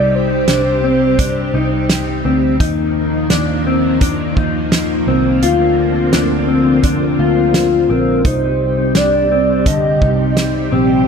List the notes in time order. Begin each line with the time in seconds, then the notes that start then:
Already playing: C2 C3 G3 C4 D#4 G4 D5
0.15 C5
0.48 C2 D4, snare, closed hi-hat
0.84 C4
1.19 D4, kick, closed hi-hat
1.54 C2 D#4
1.89 snare, closed hi-hat
2.25 D2 C4
2.60 D#2 D#3 F3 A#3 D#4, kick, closed hi-hat
3.30 D#2 D4, snare, closed hi-hat
3.67 C4
4.01 D4, kick, closed hi-hat
4.37 D#2 D#4, kick
4.72 snare, closed hi-hat
5.07 C2 C4
5.42 D2 D3 C4 F4, closed hi-hat
6.13 D2 D4, snare, closed hi-hat
6.48 C4
6.84 D4, kick, closed hi-hat
7.19 D2 F4
7.54 snare, closed hi-hat
7.90 A#1 C4 A#4
8.24 C2 C3 G3 C4 D#4 G4 C5, kick, closed hi-hat
8.95 C2 D4 D5, snare, closed hi-hat
9.31 C4
9.66 D3 D#5, kick, closed hi-hat
10.02 C2 D#4, kick
10.37 snare, closed hi-hat
10.72 A#1 C4 G5